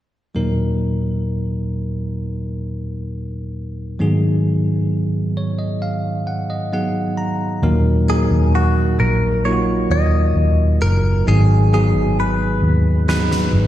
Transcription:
0.35 tine electric piano D#2 A#2 F#3 A#3 D#4 A#4
3.99 tine electric piano G#2 D#3 F#3 B3 D#4 G#4
5.37 tine electric piano C#5
5.59 tine electric piano D#5
5.82 tine electric piano F5
6.27 tine electric piano F#5
6.50 tine electric piano D#5
6.73 tine electric piano F#3 B3 D#4 G#4 F#5
7.17 tine electric piano A#5
7.62 fingered electric bass D#2, tine electric piano A#2 F#3 A#3 D#4 A#4
8.09 tine electric piano F#3 A#3 D#4 A#4, clean electric guitar G#4
8.31 fingered electric bass D#2
8.55 clean electric guitar F#4
8.99 fingered electric bass A#1, clean electric guitar A#4
9.45 tine electric piano F#3 A#3 D#4 F4, clean electric guitar C#5
9.53 tine electric piano F#4
9.90 fingered electric bass D#2, clean electric guitar D#5
10.36 fingered electric bass D#2
10.82 fingered electric bass F#1, clean electric guitar A#4
11.27 fingered electric bass G#1, tine electric piano G#2 D#3 F#3 B3 D#4 G#4, clean electric guitar G#4
11.73 tine electric piano F#3 B3 D#4 G#4, clean electric guitar G#4
11.94 fingered electric bass G#1
12.20 clean electric guitar B4
12.62 fingered electric bass D#2
13.08 tine electric piano F#3 B3 D#4 G#4, clean electric guitar B4, snare
13.32 snare
13.53 fingered electric bass G#1

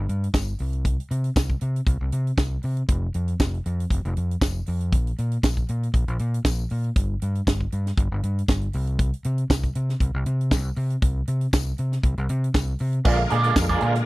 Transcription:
0.09 fingered electric bass G2, closed hi-hat
0.24 closed hi-hat
0.34 fingered electric bass G1, kick, snare, tambourine
0.47 closed hi-hat
0.59 fingered electric bass C2, open hi-hat
0.73 closed hi-hat
0.85 kick, closed hi-hat
1.00 closed hi-hat
1.11 fingered electric bass C3, closed hi-hat
1.24 closed hi-hat
1.36 fingered electric bass C2, kick, snare, tambourine
1.50 kick
1.61 fingered electric bass C3, closed hi-hat
1.76 closed hi-hat
1.87 fingered electric bass C2, kick, closed hi-hat
2.01 fingered electric bass C2
2.12 fingered electric bass C3, closed hi-hat
2.27 closed hi-hat
2.38 fingered electric bass C2, kick, snare, tambourine
2.63 fingered electric bass C3, open hi-hat
2.77 closed hi-hat
2.88 fingered electric bass F1, kick, closed hi-hat
3.14 fingered electric bass F2, closed hi-hat
3.28 closed hi-hat
3.40 fingered electric bass F1, kick, snare, tambourine
3.54 closed hi-hat
3.66 fingered electric bass F2, closed hi-hat
3.80 closed hi-hat
3.90 fingered electric bass F1, kick, closed hi-hat
4.05 fingered electric bass F1, closed hi-hat
4.17 fingered electric bass F2, closed hi-hat
4.31 closed hi-hat
4.41 fingered electric bass F1, kick, snare, tambourine
4.66 fingered electric bass F2, open hi-hat
4.80 closed hi-hat
4.92 fingered electric bass A#1, kick, closed hi-hat
5.07 closed hi-hat
5.18 fingered electric bass A#2, closed hi-hat
5.32 closed hi-hat
5.43 fingered electric bass A#1, kick, snare, tambourine
5.57 kick, closed hi-hat
5.68 fingered electric bass A#2, closed hi-hat
5.83 closed hi-hat
5.94 fingered electric bass A#1, kick, closed hi-hat
6.08 fingered electric bass A#1, closed hi-hat
6.19 fingered electric bass A#2, closed hi-hat
6.34 closed hi-hat
6.45 fingered electric bass A#1, kick, snare, tambourine
6.70 fingered electric bass A#2, open hi-hat
6.84 closed hi-hat
6.96 fingered electric bass G1, kick, closed hi-hat
7.22 fingered electric bass G2, closed hi-hat
7.35 closed hi-hat
7.47 fingered electric bass G1, kick, snare, tambourine
7.61 kick
7.72 fingered electric bass G2, closed hi-hat
7.86 snare, closed hi-hat
7.97 fingered electric bass G1, kick, closed hi-hat
8.12 fingered electric bass G1
8.23 fingered electric bass G2, closed hi-hat
8.39 closed hi-hat
8.48 fingered electric bass G1, kick, snare, tambourine
8.61 closed hi-hat
8.73 fingered electric bass C2, open hi-hat
8.87 closed hi-hat
8.99 kick, closed hi-hat
9.13 closed hi-hat
9.24 fingered electric bass C3, closed hi-hat
9.38 closed hi-hat
9.50 fingered electric bass C2, kick, snare, tambourine
9.64 kick, closed hi-hat
9.75 fingered electric bass C3, closed hi-hat
9.89 snare, closed hi-hat
10.00 fingered electric bass C2, kick, closed hi-hat
10.14 fingered electric bass C2
10.26 fingered electric bass C3, closed hi-hat
10.41 closed hi-hat
10.51 fingered electric bass C2, kick, snare, tambourine
10.76 fingered electric bass C3, open hi-hat
10.90 closed hi-hat
11.02 fingered electric bass C2, kick, closed hi-hat
11.27 fingered electric bass C3, closed hi-hat
11.41 closed hi-hat
11.53 fingered electric bass C2, kick, snare, tambourine
11.66 closed hi-hat
11.78 fingered electric bass C3, closed hi-hat
11.92 snare, closed hi-hat
12.03 fingered electric bass C2, kick, closed hi-hat
12.17 fingered electric bass C2, closed hi-hat
12.29 fingered electric bass C3, closed hi-hat
12.44 closed hi-hat
12.54 fingered electric bass C2, kick, snare, tambourine
12.67 closed hi-hat
12.79 fingered electric bass C3, open hi-hat
12.93 closed hi-hat
13.05 fingered electric bass A#1, tonewheel organ D3 G#3 A#3 F4, clean electric guitar A#3 F4 G#4 D5, kick, crash
13.18 muted clean electric guitar stroke
13.30 fingered electric bass A#2, clean electric guitar A#3 F4 G#4 D5, closed hi-hat
13.43 clean electric guitar A#3 F4 G#4 D5, closed hi-hat
13.56 fingered electric bass F2, muted clean electric guitar stroke, kick, snare, tambourine
13.69 clean electric guitar A#3 F4 G#4 D5, kick
13.81 fingered electric bass A#2, clean electric guitar A#3 F4 G#4 D5, closed hi-hat
13.95 muted clean electric guitar stroke, snare, closed hi-hat

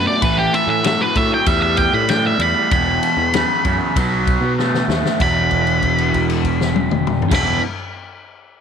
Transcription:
Already playing: overdriven electric guitar B2 A3
0.07 lead electric guitar D5
0.21 picked electric bass A1, overdriven electric guitar A2 E3, lead electric guitar B4, kick, ride
0.39 lead electric guitar G4
0.54 lead electric guitar E5, ride
0.67 picked electric bass A2, lead electric guitar E5
0.83 overdriven electric guitar A2 F#3, snare, ride
0.87 lead electric guitar E5
1.01 lead electric guitar B4
1.15 overdriven electric guitar A2 F#3, picked electric bass A2, lead electric guitar E5, kick, ride
1.34 lead electric guitar G5
1.46 picked electric bass E2, overdriven electric guitar A2 G3, lead electric guitar E5, kick, ride
1.62 lead electric guitar E5
1.77 lead electric guitar G5, kick, ride
1.93 picked electric bass A2, lead electric guitar B5
2.08 overdriven electric guitar A2 G3, lead electric guitar G5, snare, ride
2.27 lead electric guitar E5
2.39 picked electric bass E2, overdriven electric guitar A2 G3, lead electric guitar B5, ride
2.71 picked electric bass E1, overdriven electric guitar E2 B2, lead electric guitar B5, kick, ride
3.03 ride
3.17 picked electric bass E2
3.33 overdriven electric guitar E2 C#3, snare, ride
3.64 overdriven electric guitar E2 C#3, picked electric bass F#2, kick, ride
3.96 picked electric bass B1, overdriven electric guitar B2 F#3, kick, ride
4.27 kick, ride
4.41 picked electric bass B2
4.58 overdriven electric guitar B2 A3, snare
4.74 snare
4.88 picked electric bass D#2, overdriven electric guitar B2 A3, snare
5.05 snare
5.18 picked electric bass E1, overdriven electric guitar E2 B2 E3, lead electric guitar B5, kick, crash
5.51 kick, crash
5.67 crash
5.82 kick, crash
5.98 crash
6.14 kick, crash
6.30 crash
6.44 kick, crash
6.61 snare
6.76 high tom
6.91 mid tom
7.07 mid tom
7.22 floor tom
7.29 picked electric bass E1, overdriven electric guitar E2 B2, kick, snare, crash
7.33 overdriven electric guitar E3, lead electric guitar B5

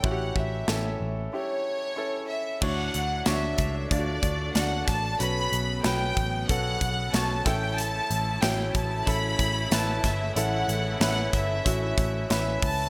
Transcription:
Already playing: upright piano C#4 E4 A4
0.03 picked electric bass A1, upright piano C#4 E4 F#4, violin section F#5, kick
0.11 upright piano G4
0.36 picked electric bass A1, violin section E5, kick
0.68 picked electric bass A1, upright piano C#4 E4 A4, snare
1.01 picked electric bass A1
1.33 upright piano C#4 E4 G4, violin section C#5
1.96 upright piano C#4 E4 A4
2.31 violin section E5
2.61 picked electric bass D2, upright piano A2 D4 F#4 C#5, string section A3 D4 A4, violin section F#5, kick, crash
2.94 picked electric bass D2, closed hi-hat
3.26 picked electric bass D2, upright piano D4 F#4 C#5, violin section E5, snare, closed hi-hat
3.58 picked electric bass C#2, kick, closed hi-hat
3.91 picked electric bass D2, upright piano D4 F4 D5, violin section D5, kick, closed hi-hat
3.98 upright piano F#4
4.23 picked electric bass D2, kick, closed hi-hat
4.55 picked electric bass D2, upright piano D4 F#4 D5, violin section F#5, snare, closed hi-hat
4.88 picked electric bass A1, violin section A5, kick, snare, closed hi-hat
5.19 picked electric bass B1, string section C#3 F#3 B3, upright piano C#4 F#4 B4, violin section B5, closed hi-hat
5.52 picked electric bass B1, closed hi-hat
5.83 picked electric bass B1, upright piano F#3 C#4 B4, violin section G5, snare, closed hi-hat
6.17 picked electric bass A1, kick, closed hi-hat
6.48 picked electric bass B1, upright piano C#4 F#4 A4, violin section F#5, kick, closed hi-hat
6.81 picked electric bass B1, kick, closed hi-hat
7.13 picked electric bass B1, upright piano C#4 F#4 C#5, violin section A5, snare, closed hi-hat
7.45 picked electric bass A1, string section E3 A3 E4, upright piano C#4 E4 A4, violin section G5, kick, snare, closed hi-hat
7.78 violin section A5, closed hi-hat
8.11 picked electric bass A1, closed hi-hat
8.42 picked electric bass A1, upright piano F#3 C#4 E4, violin section G5, snare, closed hi-hat
8.75 picked electric bass A1, violin section A5, kick, closed hi-hat
9.06 picked electric bass A1, upright piano C#4 E4 A4, violin section B5, kick, closed hi-hat
9.39 picked electric bass A1, kick, closed hi-hat
9.71 picked electric bass A1, upright piano C#4 E4 B4, violin section A5, snare, closed hi-hat
10.04 picked electric bass G1, violin section E5, kick, snare, closed hi-hat
10.36 picked electric bass A1, upright piano C#4 E4 A4, violin section F#5, closed hi-hat
10.68 picked electric bass A1, closed hi-hat
11.00 picked electric bass A1, upright piano C#4 E4 B4, violin section F#5, snare, closed hi-hat
11.33 picked electric bass G1, violin section E5, kick, closed hi-hat
11.65 picked electric bass A1, upright piano C#4 E4 F#4, kick, closed hi-hat
11.98 picked electric bass A1, kick, closed hi-hat
12.30 picked electric bass A1, upright piano C#4 E4 B4, violin section E5, snare, closed hi-hat
12.62 picked electric bass C#2, violin section A5, kick, open hi-hat

